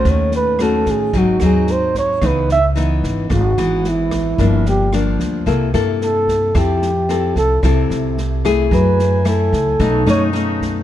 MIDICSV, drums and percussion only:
0, 0, Header, 1, 2, 480
1, 0, Start_track
1, 0, Tempo, 541516
1, 48, Time_signature, 4, 2, 24, 8
1, 9601, End_track
2, 0, Start_track
2, 0, Title_t, "Drums"
2, 40, Note_on_c, 9, 38, 25
2, 45, Note_on_c, 9, 36, 57
2, 129, Note_off_c, 9, 38, 0
2, 134, Note_off_c, 9, 36, 0
2, 281, Note_on_c, 9, 38, 23
2, 370, Note_off_c, 9, 38, 0
2, 522, Note_on_c, 9, 37, 61
2, 522, Note_on_c, 9, 38, 26
2, 611, Note_off_c, 9, 37, 0
2, 611, Note_off_c, 9, 38, 0
2, 762, Note_on_c, 9, 38, 24
2, 765, Note_on_c, 9, 36, 26
2, 850, Note_off_c, 9, 38, 0
2, 854, Note_off_c, 9, 36, 0
2, 1001, Note_on_c, 9, 38, 21
2, 1006, Note_on_c, 9, 36, 55
2, 1089, Note_off_c, 9, 38, 0
2, 1094, Note_off_c, 9, 36, 0
2, 1239, Note_on_c, 9, 37, 58
2, 1239, Note_on_c, 9, 38, 25
2, 1328, Note_off_c, 9, 37, 0
2, 1328, Note_off_c, 9, 38, 0
2, 1481, Note_on_c, 9, 38, 23
2, 1570, Note_off_c, 9, 38, 0
2, 1726, Note_on_c, 9, 38, 26
2, 1727, Note_on_c, 9, 36, 25
2, 1815, Note_off_c, 9, 36, 0
2, 1815, Note_off_c, 9, 38, 0
2, 1964, Note_on_c, 9, 37, 58
2, 1964, Note_on_c, 9, 38, 24
2, 1967, Note_on_c, 9, 36, 59
2, 2053, Note_off_c, 9, 37, 0
2, 2053, Note_off_c, 9, 38, 0
2, 2056, Note_off_c, 9, 36, 0
2, 2208, Note_on_c, 9, 38, 23
2, 2297, Note_off_c, 9, 38, 0
2, 2448, Note_on_c, 9, 38, 24
2, 2537, Note_off_c, 9, 38, 0
2, 2690, Note_on_c, 9, 36, 26
2, 2692, Note_on_c, 9, 38, 25
2, 2779, Note_off_c, 9, 36, 0
2, 2780, Note_off_c, 9, 38, 0
2, 2927, Note_on_c, 9, 37, 57
2, 2927, Note_on_c, 9, 38, 23
2, 2928, Note_on_c, 9, 36, 58
2, 3015, Note_off_c, 9, 37, 0
2, 3015, Note_off_c, 9, 38, 0
2, 3017, Note_off_c, 9, 36, 0
2, 3169, Note_on_c, 9, 38, 24
2, 3258, Note_off_c, 9, 38, 0
2, 3407, Note_on_c, 9, 38, 24
2, 3495, Note_off_c, 9, 38, 0
2, 3647, Note_on_c, 9, 36, 25
2, 3647, Note_on_c, 9, 37, 64
2, 3647, Note_on_c, 9, 38, 25
2, 3736, Note_off_c, 9, 36, 0
2, 3736, Note_off_c, 9, 37, 0
2, 3736, Note_off_c, 9, 38, 0
2, 3887, Note_on_c, 9, 36, 59
2, 3887, Note_on_c, 9, 38, 25
2, 3975, Note_off_c, 9, 36, 0
2, 3975, Note_off_c, 9, 38, 0
2, 4128, Note_on_c, 9, 38, 23
2, 4216, Note_off_c, 9, 38, 0
2, 4367, Note_on_c, 9, 37, 59
2, 4367, Note_on_c, 9, 38, 23
2, 4455, Note_off_c, 9, 37, 0
2, 4455, Note_off_c, 9, 38, 0
2, 4605, Note_on_c, 9, 36, 24
2, 4608, Note_on_c, 9, 38, 26
2, 4694, Note_off_c, 9, 36, 0
2, 4697, Note_off_c, 9, 38, 0
2, 4846, Note_on_c, 9, 36, 59
2, 4846, Note_on_c, 9, 38, 23
2, 4934, Note_off_c, 9, 36, 0
2, 4935, Note_off_c, 9, 38, 0
2, 5089, Note_on_c, 9, 37, 61
2, 5089, Note_on_c, 9, 38, 24
2, 5177, Note_off_c, 9, 37, 0
2, 5177, Note_off_c, 9, 38, 0
2, 5330, Note_on_c, 9, 38, 22
2, 5418, Note_off_c, 9, 38, 0
2, 5565, Note_on_c, 9, 36, 23
2, 5571, Note_on_c, 9, 38, 24
2, 5653, Note_off_c, 9, 36, 0
2, 5659, Note_off_c, 9, 38, 0
2, 5804, Note_on_c, 9, 36, 57
2, 5805, Note_on_c, 9, 37, 60
2, 5805, Note_on_c, 9, 38, 25
2, 5893, Note_off_c, 9, 36, 0
2, 5894, Note_off_c, 9, 37, 0
2, 5894, Note_off_c, 9, 38, 0
2, 6046, Note_on_c, 9, 38, 24
2, 6134, Note_off_c, 9, 38, 0
2, 6285, Note_on_c, 9, 38, 25
2, 6374, Note_off_c, 9, 38, 0
2, 6523, Note_on_c, 9, 36, 25
2, 6523, Note_on_c, 9, 38, 25
2, 6611, Note_off_c, 9, 36, 0
2, 6612, Note_off_c, 9, 38, 0
2, 6763, Note_on_c, 9, 36, 53
2, 6764, Note_on_c, 9, 37, 57
2, 6764, Note_on_c, 9, 38, 22
2, 6851, Note_off_c, 9, 36, 0
2, 6853, Note_off_c, 9, 37, 0
2, 6853, Note_off_c, 9, 38, 0
2, 7007, Note_on_c, 9, 38, 23
2, 7096, Note_off_c, 9, 38, 0
2, 7249, Note_on_c, 9, 38, 24
2, 7337, Note_off_c, 9, 38, 0
2, 7484, Note_on_c, 9, 36, 25
2, 7489, Note_on_c, 9, 37, 61
2, 7489, Note_on_c, 9, 38, 26
2, 7572, Note_off_c, 9, 36, 0
2, 7578, Note_off_c, 9, 37, 0
2, 7578, Note_off_c, 9, 38, 0
2, 7723, Note_on_c, 9, 36, 61
2, 7729, Note_on_c, 9, 38, 24
2, 7812, Note_off_c, 9, 36, 0
2, 7818, Note_off_c, 9, 38, 0
2, 7971, Note_on_c, 9, 38, 26
2, 8059, Note_off_c, 9, 38, 0
2, 8205, Note_on_c, 9, 37, 60
2, 8205, Note_on_c, 9, 38, 26
2, 8293, Note_off_c, 9, 37, 0
2, 8293, Note_off_c, 9, 38, 0
2, 8443, Note_on_c, 9, 36, 25
2, 8448, Note_on_c, 9, 38, 27
2, 8532, Note_off_c, 9, 36, 0
2, 8536, Note_off_c, 9, 38, 0
2, 8683, Note_on_c, 9, 36, 59
2, 8686, Note_on_c, 9, 38, 25
2, 8772, Note_off_c, 9, 36, 0
2, 8775, Note_off_c, 9, 38, 0
2, 8933, Note_on_c, 9, 37, 59
2, 8933, Note_on_c, 9, 38, 26
2, 9022, Note_off_c, 9, 37, 0
2, 9022, Note_off_c, 9, 38, 0
2, 9170, Note_on_c, 9, 38, 24
2, 9259, Note_off_c, 9, 38, 0
2, 9405, Note_on_c, 9, 36, 24
2, 9412, Note_on_c, 9, 38, 26
2, 9493, Note_off_c, 9, 36, 0
2, 9501, Note_off_c, 9, 38, 0
2, 9601, End_track
0, 0, End_of_file